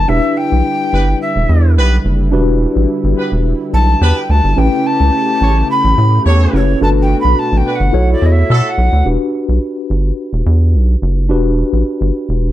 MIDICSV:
0, 0, Header, 1, 6, 480
1, 0, Start_track
1, 0, Tempo, 560748
1, 75, Time_signature, 4, 2, 24, 8
1, 10719, End_track
2, 0, Start_track
2, 0, Title_t, "Recorder"
2, 0, Program_c, 0, 74
2, 71, Note_on_c, 0, 76, 98
2, 317, Note_on_c, 0, 79, 112
2, 330, Note_off_c, 0, 76, 0
2, 1036, Note_off_c, 0, 79, 0
2, 1041, Note_on_c, 0, 76, 78
2, 1484, Note_off_c, 0, 76, 0
2, 3197, Note_on_c, 0, 81, 88
2, 3568, Note_on_c, 0, 79, 86
2, 3581, Note_off_c, 0, 81, 0
2, 3683, Note_on_c, 0, 81, 93
2, 3696, Note_off_c, 0, 79, 0
2, 3921, Note_on_c, 0, 79, 106
2, 3934, Note_off_c, 0, 81, 0
2, 4163, Note_on_c, 0, 81, 118
2, 4175, Note_off_c, 0, 79, 0
2, 4879, Note_off_c, 0, 81, 0
2, 4883, Note_on_c, 0, 83, 105
2, 5326, Note_off_c, 0, 83, 0
2, 5614, Note_on_c, 0, 73, 105
2, 5829, Note_off_c, 0, 73, 0
2, 5844, Note_on_c, 0, 81, 113
2, 5895, Note_off_c, 0, 81, 0
2, 6008, Note_on_c, 0, 79, 92
2, 6151, Note_off_c, 0, 79, 0
2, 6165, Note_on_c, 0, 83, 102
2, 6324, Note_on_c, 0, 81, 100
2, 6337, Note_off_c, 0, 83, 0
2, 6480, Note_on_c, 0, 79, 89
2, 6493, Note_off_c, 0, 81, 0
2, 6635, Note_on_c, 0, 78, 81
2, 6648, Note_off_c, 0, 79, 0
2, 6950, Note_off_c, 0, 78, 0
2, 6955, Note_on_c, 0, 74, 82
2, 7065, Note_on_c, 0, 75, 55
2, 7077, Note_off_c, 0, 74, 0
2, 7119, Note_on_c, 0, 76, 93
2, 7132, Note_off_c, 0, 75, 0
2, 7439, Note_on_c, 0, 78, 78
2, 7452, Note_off_c, 0, 76, 0
2, 7757, Note_off_c, 0, 78, 0
2, 10719, End_track
3, 0, Start_track
3, 0, Title_t, "Horn section"
3, 0, Program_c, 1, 61
3, 796, Note_on_c, 1, 71, 90
3, 798, Note_on_c, 1, 59, 73
3, 798, Note_on_c, 1, 67, 81
3, 904, Note_off_c, 1, 71, 0
3, 905, Note_off_c, 1, 59, 0
3, 905, Note_off_c, 1, 67, 0
3, 1514, Note_on_c, 1, 67, 91
3, 1515, Note_on_c, 1, 71, 108
3, 1516, Note_on_c, 1, 59, 100
3, 1667, Note_off_c, 1, 67, 0
3, 1668, Note_off_c, 1, 71, 0
3, 1669, Note_off_c, 1, 59, 0
3, 2713, Note_on_c, 1, 59, 74
3, 2714, Note_on_c, 1, 71, 85
3, 2715, Note_on_c, 1, 67, 78
3, 2822, Note_off_c, 1, 59, 0
3, 2823, Note_off_c, 1, 67, 0
3, 2823, Note_off_c, 1, 71, 0
3, 3433, Note_on_c, 1, 67, 104
3, 3435, Note_on_c, 1, 59, 96
3, 3435, Note_on_c, 1, 71, 112
3, 3587, Note_off_c, 1, 67, 0
3, 3588, Note_off_c, 1, 59, 0
3, 3588, Note_off_c, 1, 71, 0
3, 4636, Note_on_c, 1, 67, 83
3, 4636, Note_on_c, 1, 73, 81
3, 4637, Note_on_c, 1, 69, 78
3, 4744, Note_off_c, 1, 67, 0
3, 4744, Note_off_c, 1, 69, 0
3, 4744, Note_off_c, 1, 73, 0
3, 5353, Note_on_c, 1, 73, 112
3, 5355, Note_on_c, 1, 67, 105
3, 5355, Note_on_c, 1, 69, 103
3, 5666, Note_off_c, 1, 73, 0
3, 5667, Note_off_c, 1, 67, 0
3, 5667, Note_off_c, 1, 69, 0
3, 6550, Note_on_c, 1, 66, 81
3, 6551, Note_on_c, 1, 62, 83
3, 6551, Note_on_c, 1, 71, 87
3, 6660, Note_off_c, 1, 66, 0
3, 6661, Note_off_c, 1, 62, 0
3, 6661, Note_off_c, 1, 71, 0
3, 7274, Note_on_c, 1, 64, 103
3, 7276, Note_on_c, 1, 69, 117
3, 7277, Note_on_c, 1, 66, 99
3, 7427, Note_off_c, 1, 64, 0
3, 7429, Note_off_c, 1, 66, 0
3, 7429, Note_off_c, 1, 69, 0
3, 10719, End_track
4, 0, Start_track
4, 0, Title_t, "Tine electric piano"
4, 0, Program_c, 2, 4
4, 70, Note_on_c, 2, 62, 69
4, 74, Note_on_c, 2, 64, 59
4, 78, Note_on_c, 2, 67, 65
4, 84, Note_on_c, 2, 71, 70
4, 1958, Note_off_c, 2, 62, 0
4, 1960, Note_off_c, 2, 64, 0
4, 1962, Note_off_c, 2, 67, 0
4, 1965, Note_off_c, 2, 71, 0
4, 1983, Note_on_c, 2, 62, 79
4, 1988, Note_on_c, 2, 66, 70
4, 1992, Note_on_c, 2, 67, 75
4, 1997, Note_on_c, 2, 71, 89
4, 3875, Note_off_c, 2, 62, 0
4, 3877, Note_off_c, 2, 66, 0
4, 3879, Note_off_c, 2, 67, 0
4, 3882, Note_off_c, 2, 71, 0
4, 3905, Note_on_c, 2, 61, 67
4, 3909, Note_on_c, 2, 64, 64
4, 3914, Note_on_c, 2, 67, 57
4, 3917, Note_on_c, 2, 71, 72
4, 5556, Note_off_c, 2, 61, 0
4, 5558, Note_off_c, 2, 64, 0
4, 5561, Note_off_c, 2, 67, 0
4, 5563, Note_off_c, 2, 71, 0
4, 5591, Note_on_c, 2, 61, 49
4, 5593, Note_on_c, 2, 64, 44
4, 5593, Note_on_c, 2, 67, 47
4, 5598, Note_on_c, 2, 71, 55
4, 5829, Note_on_c, 2, 62, 69
4, 5830, Note_off_c, 2, 71, 0
4, 5832, Note_on_c, 2, 66, 61
4, 5833, Note_off_c, 2, 61, 0
4, 5834, Note_off_c, 2, 64, 0
4, 5834, Note_off_c, 2, 67, 0
4, 5836, Note_on_c, 2, 69, 61
4, 5840, Note_on_c, 2, 71, 73
4, 6773, Note_off_c, 2, 62, 0
4, 6774, Note_off_c, 2, 66, 0
4, 6776, Note_off_c, 2, 69, 0
4, 6779, Note_off_c, 2, 71, 0
4, 6783, Note_on_c, 2, 64, 65
4, 6786, Note_on_c, 2, 66, 66
4, 6794, Note_on_c, 2, 69, 60
4, 6797, Note_on_c, 2, 73, 82
4, 7730, Note_off_c, 2, 64, 0
4, 7731, Note_off_c, 2, 66, 0
4, 7735, Note_off_c, 2, 69, 0
4, 7737, Note_off_c, 2, 73, 0
4, 7743, Note_on_c, 2, 62, 61
4, 7749, Note_on_c, 2, 66, 53
4, 7754, Note_on_c, 2, 67, 56
4, 7757, Note_on_c, 2, 71, 63
4, 9635, Note_off_c, 2, 62, 0
4, 9638, Note_off_c, 2, 66, 0
4, 9640, Note_off_c, 2, 67, 0
4, 9642, Note_off_c, 2, 71, 0
4, 9666, Note_on_c, 2, 62, 76
4, 9669, Note_on_c, 2, 66, 66
4, 9676, Note_on_c, 2, 67, 64
4, 9679, Note_on_c, 2, 71, 74
4, 10719, Note_off_c, 2, 62, 0
4, 10719, Note_off_c, 2, 66, 0
4, 10719, Note_off_c, 2, 67, 0
4, 10719, Note_off_c, 2, 71, 0
4, 10719, End_track
5, 0, Start_track
5, 0, Title_t, "Analog synth pad"
5, 0, Program_c, 3, 89
5, 77, Note_on_c, 3, 64, 78
5, 80, Note_on_c, 3, 55, 69
5, 82, Note_on_c, 3, 50, 73
5, 3882, Note_off_c, 3, 64, 0
5, 3883, Note_off_c, 3, 55, 0
5, 3885, Note_off_c, 3, 50, 0
5, 3911, Note_on_c, 3, 57, 71
5, 3912, Note_on_c, 3, 49, 77
5, 3912, Note_on_c, 3, 67, 81
5, 5814, Note_off_c, 3, 67, 0
5, 5815, Note_off_c, 3, 49, 0
5, 5838, Note_on_c, 3, 47, 77
5, 5839, Note_on_c, 3, 66, 81
5, 6787, Note_off_c, 3, 66, 0
5, 6799, Note_on_c, 3, 64, 79
5, 7719, Note_off_c, 3, 57, 0
5, 7737, Note_off_c, 3, 47, 0
5, 7747, Note_off_c, 3, 64, 0
5, 10719, End_track
6, 0, Start_track
6, 0, Title_t, "Analog synth bass"
6, 0, Program_c, 4, 38
6, 77, Note_on_c, 4, 28, 112
6, 174, Note_off_c, 4, 28, 0
6, 445, Note_on_c, 4, 35, 80
6, 531, Note_off_c, 4, 35, 0
6, 797, Note_on_c, 4, 31, 95
6, 981, Note_off_c, 4, 31, 0
6, 1164, Note_on_c, 4, 28, 86
6, 1250, Note_off_c, 4, 28, 0
6, 1275, Note_on_c, 4, 40, 97
6, 1515, Note_on_c, 4, 35, 96
6, 1528, Note_off_c, 4, 40, 0
6, 1700, Note_off_c, 4, 35, 0
6, 1754, Note_on_c, 4, 30, 92
6, 1994, Note_on_c, 4, 28, 115
6, 2007, Note_off_c, 4, 30, 0
6, 2277, Note_off_c, 4, 28, 0
6, 2363, Note_on_c, 4, 33, 75
6, 2449, Note_off_c, 4, 33, 0
6, 2602, Note_on_c, 4, 31, 89
6, 2689, Note_off_c, 4, 31, 0
6, 2843, Note_on_c, 4, 28, 89
6, 3027, Note_off_c, 4, 28, 0
6, 3197, Note_on_c, 4, 35, 99
6, 3381, Note_off_c, 4, 35, 0
6, 3434, Note_on_c, 4, 40, 97
6, 3532, Note_off_c, 4, 40, 0
6, 3676, Note_on_c, 4, 38, 88
6, 3774, Note_off_c, 4, 38, 0
6, 3802, Note_on_c, 4, 31, 90
6, 3889, Note_off_c, 4, 31, 0
6, 3916, Note_on_c, 4, 33, 118
6, 4013, Note_off_c, 4, 33, 0
6, 4282, Note_on_c, 4, 37, 84
6, 4369, Note_off_c, 4, 37, 0
6, 4634, Note_on_c, 4, 33, 101
6, 4819, Note_off_c, 4, 33, 0
6, 5002, Note_on_c, 4, 33, 98
6, 5089, Note_off_c, 4, 33, 0
6, 5117, Note_on_c, 4, 45, 99
6, 5301, Note_off_c, 4, 45, 0
6, 5356, Note_on_c, 4, 40, 86
6, 5540, Note_off_c, 4, 40, 0
6, 5594, Note_on_c, 4, 30, 87
6, 5779, Note_off_c, 4, 30, 0
6, 5834, Note_on_c, 4, 31, 101
6, 6117, Note_off_c, 4, 31, 0
6, 6202, Note_on_c, 4, 35, 78
6, 6289, Note_off_c, 4, 35, 0
6, 6440, Note_on_c, 4, 33, 83
6, 6528, Note_off_c, 4, 33, 0
6, 6680, Note_on_c, 4, 31, 99
6, 6767, Note_off_c, 4, 31, 0
6, 6793, Note_on_c, 4, 35, 105
6, 6978, Note_off_c, 4, 35, 0
6, 7036, Note_on_c, 4, 40, 99
6, 7220, Note_off_c, 4, 40, 0
6, 7276, Note_on_c, 4, 47, 97
6, 7373, Note_off_c, 4, 47, 0
6, 7515, Note_on_c, 4, 35, 93
6, 7613, Note_off_c, 4, 35, 0
6, 7641, Note_on_c, 4, 38, 91
6, 7728, Note_off_c, 4, 38, 0
6, 7755, Note_on_c, 4, 28, 107
6, 7853, Note_off_c, 4, 28, 0
6, 8121, Note_on_c, 4, 35, 77
6, 8208, Note_off_c, 4, 35, 0
6, 8476, Note_on_c, 4, 31, 82
6, 8660, Note_off_c, 4, 31, 0
6, 8841, Note_on_c, 4, 28, 82
6, 8928, Note_off_c, 4, 28, 0
6, 8954, Note_on_c, 4, 40, 95
6, 9198, Note_on_c, 4, 35, 93
6, 9211, Note_off_c, 4, 40, 0
6, 9382, Note_off_c, 4, 35, 0
6, 9436, Note_on_c, 4, 30, 89
6, 9678, Note_on_c, 4, 28, 103
6, 9691, Note_off_c, 4, 30, 0
6, 9959, Note_off_c, 4, 28, 0
6, 10040, Note_on_c, 4, 33, 75
6, 10128, Note_off_c, 4, 33, 0
6, 10281, Note_on_c, 4, 31, 87
6, 10369, Note_off_c, 4, 31, 0
6, 10519, Note_on_c, 4, 28, 85
6, 10705, Note_off_c, 4, 28, 0
6, 10719, End_track
0, 0, End_of_file